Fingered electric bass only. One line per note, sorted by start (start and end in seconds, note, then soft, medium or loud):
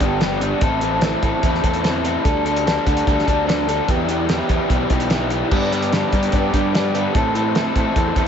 0.01 0.53 G1 medium
0.61 1.14 A1 loud
1.23 1.32 A1 medium
1.43 1.61 E2 medium
1.64 2.16 E2 medium
2.25 2.77 D2 loud
2.87 3.04 D2 medium
3.07 3.24 D2 loud
3.28 3.79 D2 medium
3.88 4.40 E2 loud
4.49 4.58 E2 medium
4.70 4.87 B1 medium
4.90 5.42 B1 medium
5.52 6.03 G2 loud
6.13 6.30 G2 loud
6.33 6.50 G2 loud
6.54 7.05 G2 medium
7.15 7.66 A2 medium
7.76 7.84 A2 medium
7.96 8.13 E2 medium
8.16 8.28 E2 medium